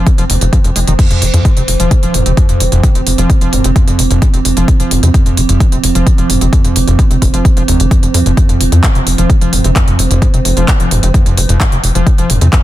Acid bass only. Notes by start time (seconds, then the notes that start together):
0.06 F#2
0.18 F3
0.30 D#2
0.41 F2
0.53 F2
0.64 F2
0.76 G#3
0.87 D#3
0.99 F2
1.11 F2
1.22 F3
1.34 F2
1.57 C3
1.68 F1
1.80 F3
1.91 F#2
2.03 F3
2.14 F2
2.26 C3
2.37 F2
2.49 F2
2.60 F3
2.72 F2
2.95 C3
3.07 F1
3.18 F3
3.30 F#2
3.41 F3
3.53 F2
3.64 C3
3.76 F2
3.87 F2
3.99 F3
4.11 F2
4.34 C3
4.45 F1
4.57 F3
4.68 F#2
4.80 F3
4.91 F2
5.03 C3
5.14 F2
5.26 F2
5.37 F3
5.49 F2
5.60 G#2
5.72 C3
5.84 F1
5.95 F3
6.07 F#2
6.18 F3
6.30 F2
6.41 C3
6.53 F2
6.64 F2
6.76 F3
6.87 F2
6.99 G#2
7.11 C3
7.33 F3
7.45 F#2
7.57 F3
7.68 D#2
7.80 F3
7.91 F2
8.03 F2
8.14 F2
8.26 F2
8.37 F2
8.49 F2
8.60 F3
8.72 F2
8.95 C3
9.07 F1
9.18 F3
9.30 F#2
9.41 F3
9.53 F2
9.64 C3
9.76 F2
9.88 F2
9.99 F3
10.11 F2
10.22 G#2
10.34 C3
10.45 F1
10.57 F3
10.68 F#2
10.80 F3
10.91 F2
11.03 C3
11.14 F2
11.26 F2
11.37 F3
11.49 F2
11.72 C3
11.83 F1
11.95 F3
12.06 F#2
12.18 F3
12.30 F2
12.41 C3
12.53 F2